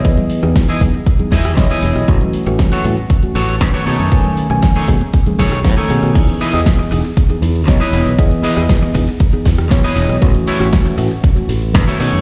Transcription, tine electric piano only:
\new Staff \with { instrumentName = "Tine electric piano" } { \time 4/4 \key e \major \tempo 4 = 118 <e b gis' dis''>8. <e b dis' gis'>8. <e b dis' gis'>16 r8 <e b dis' gis'>16 r8 <e b cis'' dis''>4 | <e a cis' fis'>8. <e a cis' fis'>8. <e a cis' fis'>16 r8 <e a cis' fis'>16 r8 <dis a cis' b'>4 | <dis a cis' gis''>8. <dis a cis' gis''>8. <dis a cis' gis'>16 r8 <dis a cis' gis'>16 <dis a cis' gis'>16 r8 <dis a cis' a'>16 <dis a cis' gis'>8 | <e b dis' gis'>8. <e b gis' dis''>8. <e b dis' gis'>16 r8 <e b dis' gis'>16 r8 <e b cis'' dis''>4 |
<e b gis' dis''>8. <e b gis' dis''>8. <e b dis' gis'>16 r8 <e b dis' gis'>16 r8 <e b cis''>4 | <e a cis' fis'>8. <e a cis' fis'>8. <e a cis' fis'>16 r8 <e a cis' fis'>16 r8 <dis a cis' b'>4 | }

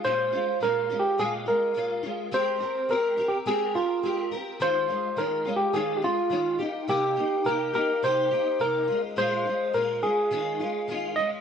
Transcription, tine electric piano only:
\new Staff \with { instrumentName = "Tine electric piano" } { \time 4/4 \key aes \major \tempo 4 = 105 c''4 \tuplet 3/2 { bes'4 g'8 } aes'8 bes'4 r8 | c''4 \tuplet 3/2 { bes'4 g'8 } aes'8 f'4 r8 | c''4 \tuplet 3/2 { bes'4 g'8 } aes'16. g'32 f'4 r8 | g'4 bes'8 bes'8 c''4 bes'8. r16 |
c''4 bes'8 aes'2 ees''8 | }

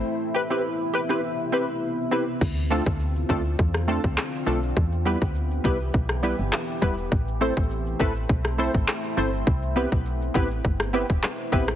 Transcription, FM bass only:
\new Staff \with { instrumentName = "FM bass" } { \clef bass \time 4/4 \key d \dorian \tempo 4 = 102 r1 | d,8. d,8. d,8 e,8. d,16 r8 b,,8 | e,8. d,8. c,8 b,,8. g,,16 r8 e,,8 | a,,8. a,,8. a,,8 b,,8. a,,16 r8 g,,8 |
c,8. b,,8. a,,8 g,,8. e,,16 r8 a,,8 | }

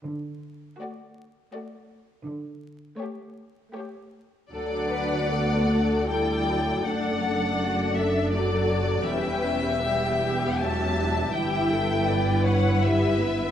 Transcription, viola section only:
\new Staff \with { instrumentName = "Viola section" } { \time 3/4 \key d \major \tempo 4 = 81 << { r2. | r2. | d'4 fis'4 e'4 | d'8 d'4. fis'4 |
cis'4 b8 b8 cis'8 d'8 | e'4 e'2 | } \\ { r4 a4 a4 | r4 a4 a4 | fis4 b8 a8 g8 fis8 | a4 a4 fis4 |
g4 g4 fis4 | e2 g8 b8 | } >> }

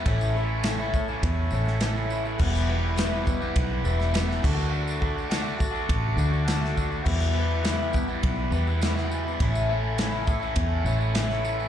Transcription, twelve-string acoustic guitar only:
\new Staff \with { instrumentName = "Twelve-string acoustic guitar" } { \time 4/4 \key e \dorian \tempo 4 = 103 <a, e a cis' e'>8 <a cis' e'>8 <e a cis' e'>8 <a cis' e'>4 <a cis' e'>8 <e a cis' e'>4 | <e, b, e g b e'>8 <e g b e'>8 <e g b e'>8 <e g b e'>4 <e g b e'>8 <e g b e'>8 <d a d' fis'>8~ | <d a d' fis'>8 <a d' fis'>8 <d a d' fis'>8 <a d' fis'>4 <a d' fis'>8 <d a d' fis'>4 | <e, b, e g b e'>8 <e g b e'>8 <e g b e'>8 <e g b e'>4 <e g b e'>8 <e g b e'>4 |
<a, e a cis' e'>8 <a cis' e'>8 <e a cis' e'>8 <a cis' e'>4 <a cis' e'>8 <e a cis' e'>4 | }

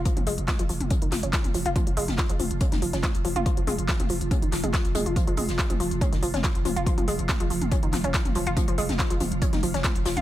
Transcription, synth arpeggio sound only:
\new Staff \with { instrumentName = "Synth arpeggio sound" } { \clef bass \time 4/4 \key des \major \tempo 4 = 141 f16 f16 aes16 r16 f16 f16 f16 r16 des'16 ees16 f16 des'16 f16 r16 f16 f'16 | f16 f16 aes16 r16 f16 f16 f16 r16 des'16 ees16 f16 des'16 f16 r16 f16 f'16 | f16 f16 aes16 r16 f16 f16 f16 r16 des'16 ees16 f16 aes16 f16 r16 aes16 f16 | f16 f16 aes16 r16 f16 f16 f16 r16 des'16 ees16 f16 des'16 f16 r16 f16 f'16 |
f16 f16 aes16 r16 f16 f16 f16 r16 des'16 ees16 f16 des'16 f16 r16 f16 f'16 | f16 f16 aes16 r16 f16 f16 f16 r16 des'16 ees16 f16 des'16 f16 r16 f16 f'16 | }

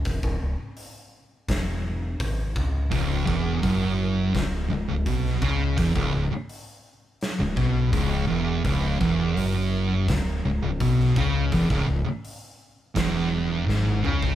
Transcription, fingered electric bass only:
\new Staff \with { instrumentName = "Fingered electric bass" } { \clef bass \time 4/4 \key cis \minor \tempo 4 = 84 e,,16 cis,,16 cis,,16 r4 r16 e,,4 gis,,8 cis,8 | cis,,8 e,,8 fis,,4 cis,,8 cis,,16 cis,,16 b,,8 cis,8 | e,,16 cis,,16 cis,,16 r4. cis,,16 b,,8 cis,,8 e,,8 | cis,,8 e,,8 fis,,4 cis,,8 cis,,16 cis,,16 b,,8 cis,8 |
e,,16 cis,,16 cis,,16 r4 r16 e,,4 gis,,8 cis,8 | }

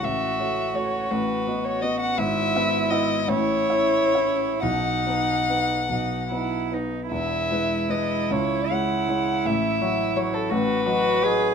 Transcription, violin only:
\new Staff \with { instrumentName = "Violin" } { \time 6/8 \key b \mixolydian \tempo 4. = 54 e''4 cis''8 b'8. cis''16 dis''16 fis''16 | e''4 dis''8 cis''4. | fis''2~ fis''8 r8 | e''4 dis''8 cis''8 fis''4 |
e''4 cis''16 a'16 b'4. | }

